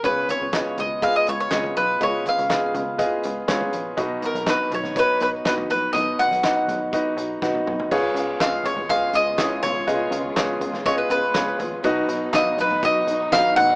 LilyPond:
<<
  \new Staff \with { instrumentName = "Mandolin" } { \time 4/4 \key des \mixolydian \tempo 4 = 122 ces''8 des''4 ees''8 f''16 ees''16 des''16 des''8. ces''8 | des''8 f''2. r8 | r8 bes'8 ces''8 des''8 ces''8 ces''8 ces''8 ces''8 | ees''8 ges''2 r4. |
r4 f''8 des''8 f''8 ees''4 des''8~ | des''2 des''16 ces''16 ces''4 r8 | r4 ees''8 ces''8 ees''4 f''8 ges''8 | }
  \new Staff \with { instrumentName = "Grand piano" } { \time 4/4 \key des \mixolydian <f' aes' ces'' des''>4 <f' aes' ces'' ees''>4 <f' aes' ces'' ees''>4 <f' aes' ces'' ees''>4 | <f' aes' ces'' ees''>4 <f' aes' ces'' ees''>4 <f' aes' ces'' ees''>4 <f' aes' ces'' des''>4 | <ees' ges' ces'' ees''>4 <ees' ges' ces'' ees''>4 <ees' ges' ces'' des''>4 <ees' ges' ces'' ees''>4 | <ees' ges' ces'' ees''>4 <ees' ges' ces'' ees''>4 <ees' ges' ces'' ees''>4 <ees' ges' ces'' ges''>4 |
<f' aes' ces'' des''>4 <f' aes' ces'' ees''>4 <f' aes' ces'' ees''>4 <fes' f' aes' ces'' des''>4 | <f' aes' ces'' ees''>4 <f' aes' ces'' des''>4 <f' aes' ces'' ees''>4 <f' aes' ces'' des''>4 | <ees' ges' ces'' ees''>4 <ees' ges' ces'' f''>4 <ees' ges' ces'' ees''>4 <ees' ges' ces'' ees''>4 | }
  \new Staff \with { instrumentName = "Grand piano" } { \clef bass \time 4/4 \key des \mixolydian des4. r2 r8 | des4. r2 r8 | ces4. r2 r8 | ces4. r2 r8 |
des4. r2 r8 | des4. r2 r8 | ces4. r2 r8 | }
  \new Staff \with { instrumentName = "Clean electric guitar" } { \time 4/4 \key des \mixolydian <des aes ces' f' ces''>8 <ces' f' ces''>8 <des aes ces' f' ces''>8 <ces' f' ces''>8 <aes ces' f' ces''>8 <ces' f' ces''>8 <des aes ces' f' ces''>8 <ces' f' ces''>8 | <des aes ces' f' ces''>8 <ces' f' ces''>8 <des aes ces' f' ces''>8 <ces' f' ces''>8 <aes ces' f' ces''>8 <ces' f' ces''>8 <des aes ces' f' ces''>8 <ces' f' ces''>8 | <ces ees ges ces' ees' ces''>8 <ges ces' ees' ces''>8 <ces ees ges ces' ees' ces''>8 <ges ces' ees' ces''>8 <ges ces' ees' ces''>8 <ges ces' ees'>8 <ces ees ges ces' ees' ces''>8 <ges ces' ees' ces''>8 | <ces ees ges ces' ees' ces''>8 <ges ces' ees' ces''>8 <ces ees ges ces' ees' ces''>8 <ges ces' ees' ces''>8 <ges ces' ees' ces''>8 <ges ces' ees' ces''>8 <ces ees ges ces' ees' ces''>8 <ges ces' ees' ces''>8 |
r1 | r1 | <ces ees ges ces' ees' ces''>8 <ges ces' ees' ces''>8 <ces ees ges ces' ees' ces''>8 <ges ces' ees' ces''>8 <ges ces' ees' ces''>8 <ges ces' ees' ces''>8 <ces ees ges ces' ces''>8 <ges ces' ees' ces''>8 | }
  \new Staff \with { instrumentName = "String section" } { \time 4/4 \key des \mixolydian << { r1 | r1 | r1 | r1 |
<des aes f'>1~ | <des aes f'>1 | <ges ees'>1 | } \\ { r1 | r1 | r1 | r1 |
ces'1~ | ces'1~ | ces'1 | } >> }
  \new Staff \with { instrumentName = "Analog synth bass" } { \clef bass \time 4/4 \key des \mixolydian des,8 r16 des,8 r16 des,8. r16 des,8 des,8 ces,8 | des,8 r16 des,8 r16 des,8. r16 des,8 des,8 bes,,8 | ces,8 r16 ces,8 r16 ces,8. r16 ces,8 ces,8 bes,,8 | ces,8 r16 ces,8 r16 ces,8. r16 ces,8 ces,8 ces,8 |
des,8 des,8 des,8 des,8 des,8 des,8 des,8 ces,8 | des,8 des,8 des,8 des,8 des,8 des,8 des,8 bes,,8 | ces,8 ces,8 ces,8 ces,8 ces,8 ces,8 ces,8 bes,,8 | }
  \new DrumStaff \with { instrumentName = "Drums" } \drummode { \time 4/4 <hh bd>8 <hh tomfh>8 <hc hh bd sn>8 <hh tomfh>8 <hh bd>8 hh8 <hc hh bd sn>16 tomfh16 hh8 | <hh bd>8 <hh tomfh>16 hh16 <hc hh bd sn>8 <hh tomfh>8 <hh bd>8 hh8 <hc hh bd sn>16 tomfh16 hh8 | <hh bd>8 <hh tomfh>16 hh16 <hc hh bd sn>8 <hh tomfh>16 <sn tomfh>16 <hh bd>8 hh8 <hc hh bd sn>16 tomfh16 hh8 | <hh bd>8 <hh tomfh>16 hh16 <hc hh bd sn>8 <hh tomfh>8 <hh bd>8 hh8 <bd sn>16 tommh16 toml16 tomfh16 |
<cymc bd>8 hh8 <hc hh bd sn>8 <hh tomfh>16 tomfh16 <hh bd>8 hh8 <hc hh bd sn>8 <hh tomfh>8 | <hh bd>8 <hh tomfh>8 <hc hh bd sn>8 <hh tomfh>16 <sn tomfh>16 <hh bd>8 hh8 <hc hh bd sn>8 <hh tomfh>8 | <hh bd>8 hh8 <hc hh bd sn>8 <hh tomfh>16 tomfh16 <hh bd>8 hh8 <hc hh bd sn>8 <hh tomfh>8 | }
>>